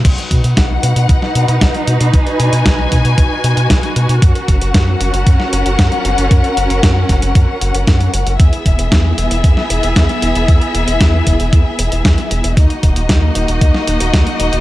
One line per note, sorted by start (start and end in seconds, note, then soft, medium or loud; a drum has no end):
0.05 0.15 B1 loud
0.05 4.18 D#4 medium
0.05 8.36 F#4 medium
0.05 4.18 B4 medium
0.05 2.11 F#5 medium
0.05 kick loud
0.05 closed hi-hat medium
0.05 crash medium
0.18 closed hi-hat soft
0.31 0.41 B2 medium
0.31 kick medium
0.31 closed hi-hat medium
0.44 0.55 B2 medium
0.44 closed hi-hat medium
0.57 0.78 B1 medium
0.57 kick loud
0.57 snare loud
0.57 closed hi-hat medium
0.83 0.94 B2 medium
0.83 closed hi-hat medium
0.96 1.07 B2 loud
0.96 closed hi-hat medium
1.09 1.20 B1 medium
1.09 kick loud
1.09 closed hi-hat medium
1.22 snare soft
1.35 1.46 B2 loud
1.35 closed hi-hat medium
1.48 1.59 B2 medium
1.48 closed hi-hat medium
1.61 1.72 B1 medium
1.61 kick loud
1.61 snare loud
1.61 closed hi-hat medium
1.75 closed hi-hat soft
1.87 1.98 B2 medium
1.87 closed hi-hat medium
2.01 2.11 B2 loud
2.01 closed hi-hat medium
2.13 2.24 B1 loud
2.13 4.20 G#5 medium
2.13 kick loud
2.13 closed hi-hat medium
2.27 closed hi-hat soft
2.40 2.50 B2 loud
2.40 closed hi-hat medium
2.53 2.63 B2 medium
2.53 closed hi-hat medium
2.66 2.87 B1 medium
2.66 kick loud
2.66 snare loud
2.66 closed hi-hat medium
2.92 3.02 B2 medium
2.92 kick medium
2.92 closed hi-hat medium
3.05 3.15 B2 loud
3.05 closed hi-hat medium
3.18 3.28 B1 medium
3.18 kick loud
3.18 closed hi-hat medium
3.44 3.55 B2 medium
3.44 closed hi-hat medium
3.57 3.68 B2 medium
3.57 closed hi-hat medium
3.70 3.81 B1 medium
3.70 kick loud
3.70 snare loud
3.70 closed hi-hat medium
3.83 closed hi-hat soft
3.96 4.07 B2 loud
3.96 closed hi-hat medium
4.09 4.20 B2 loud
4.09 closed hi-hat medium
4.22 4.33 F#2 loud
4.22 8.36 C#4 medium
4.22 8.36 A#4 medium
4.22 8.36 F#5 loud
4.22 kick loud
4.22 closed hi-hat medium
4.35 closed hi-hat soft
4.48 4.59 F#1 medium
4.48 kick medium
4.48 closed hi-hat medium
4.61 4.72 F#1 medium
4.61 closed hi-hat medium
4.74 4.95 F#2 medium
4.74 kick loud
4.74 snare loud
4.74 closed hi-hat medium
5.00 5.11 F#1 loud
5.00 closed hi-hat medium
5.13 5.24 F#1 loud
5.13 closed hi-hat medium
5.27 5.37 F#2 medium
5.27 kick loud
5.27 closed hi-hat medium
5.40 snare soft
5.53 5.63 F#1 medium
5.53 closed hi-hat medium
5.66 5.76 F#1 medium
5.66 closed hi-hat medium
5.79 5.89 F#2 medium
5.79 kick loud
5.79 snare loud
5.79 closed hi-hat medium
5.92 closed hi-hat soft
6.05 6.15 F#1 medium
6.05 closed hi-hat medium
6.18 6.28 F#1 loud
6.18 closed hi-hat medium
6.31 6.41 F#2 loud
6.31 kick loud
6.31 closed hi-hat medium
6.44 closed hi-hat soft
6.57 6.67 F#1 medium
6.57 closed hi-hat medium
6.70 6.81 F#1 medium
6.70 closed hi-hat medium
6.83 7.04 F#2 medium
6.83 kick loud
6.83 snare loud
6.83 closed hi-hat medium
7.09 7.20 F#1 medium
7.09 kick medium
7.09 snare soft
7.09 closed hi-hat medium
7.22 7.33 F#1 loud
7.22 closed hi-hat medium
7.35 7.46 F#2 medium
7.35 kick loud
7.35 closed hi-hat medium
7.61 7.72 F#1 loud
7.61 closed hi-hat medium
7.74 7.85 F#1 medium
7.74 closed hi-hat medium
7.87 8.09 F#2 medium
7.87 kick loud
7.87 snare loud
7.87 closed hi-hat medium
8.01 closed hi-hat soft
8.14 8.24 F#1 medium
8.14 closed hi-hat medium
8.27 8.37 F#1 loud
8.27 closed hi-hat medium
8.40 8.50 E2 loud
8.40 12.53 B3 medium
8.40 12.53 E4 medium
8.40 12.53 G#4 medium
8.40 12.53 E5 loud
8.40 kick loud
8.40 closed hi-hat medium
8.53 closed hi-hat soft
8.66 8.76 E1 medium
8.66 kick medium
8.66 closed hi-hat medium
8.79 8.89 E1 medium
8.79 closed hi-hat soft
8.92 9.13 E2 medium
8.92 kick loud
8.92 snare loud
8.92 closed hi-hat medium
9.18 9.28 E1 medium
9.18 closed hi-hat medium
9.31 9.41 E1 loud
9.31 closed hi-hat soft
9.44 9.55 E2 medium
9.44 kick loud
9.44 closed hi-hat medium
9.57 snare soft
9.70 9.81 E1 medium
9.70 closed hi-hat medium
9.83 9.94 E1 medium
9.83 closed hi-hat soft
9.96 10.07 E2 medium
9.96 kick loud
9.96 snare loud
9.96 closed hi-hat medium
10.09 closed hi-hat soft
10.22 10.33 E1 medium
10.22 closed hi-hat medium
10.35 10.46 E1 loud
10.35 closed hi-hat soft
10.48 10.59 E2 loud
10.48 kick loud
10.48 closed hi-hat medium
10.61 closed hi-hat soft
10.74 10.85 E1 medium
10.74 closed hi-hat medium
10.87 10.98 E1 medium
10.87 closed hi-hat soft
11.01 11.22 E2 medium
11.01 kick loud
11.01 snare loud
11.01 closed hi-hat medium
11.27 11.37 E1 medium
11.27 kick medium
11.27 closed hi-hat medium
11.40 11.50 E1 loud
11.40 closed hi-hat soft
11.53 11.63 E2 medium
11.53 kick loud
11.53 closed hi-hat medium
11.79 11.89 E1 medium
11.79 closed hi-hat medium
11.92 12.02 E1 medium
11.92 closed hi-hat soft
12.05 12.15 E2 medium
12.05 kick loud
12.05 snare loud
12.05 closed hi-hat medium
12.18 closed hi-hat soft
12.31 12.42 E1 medium
12.31 closed hi-hat medium
12.44 12.55 E1 loud
12.44 closed hi-hat soft
12.57 12.68 D#2 loud
12.57 14.60 A#3 medium
12.57 14.60 D#4 medium
12.57 14.60 F#4 medium
12.57 14.60 D#5 medium
12.57 kick loud
12.57 closed hi-hat medium
12.70 closed hi-hat soft
12.83 12.94 D#1 medium
12.83 kick medium
12.83 closed hi-hat medium
12.96 13.07 D#1 medium
12.96 closed hi-hat medium
13.09 13.30 D#2 medium
13.09 kick loud
13.09 snare loud
13.09 closed hi-hat medium
13.35 13.46 D#1 medium
13.35 closed hi-hat medium
13.48 13.59 D#1 loud
13.48 closed hi-hat medium
13.61 13.72 D#2 medium
13.61 kick loud
13.61 closed hi-hat medium
13.74 snare soft
13.88 13.98 D#1 medium
13.88 closed hi-hat medium
14.00 14.11 D#1 medium
14.00 closed hi-hat medium
14.14 14.24 D#2 medium
14.14 kick loud
14.14 snare loud
14.14 closed hi-hat medium
14.27 closed hi-hat soft
14.40 14.50 D#1 medium
14.40 closed hi-hat medium
14.53 14.60 D#1 loud
14.53 closed hi-hat soft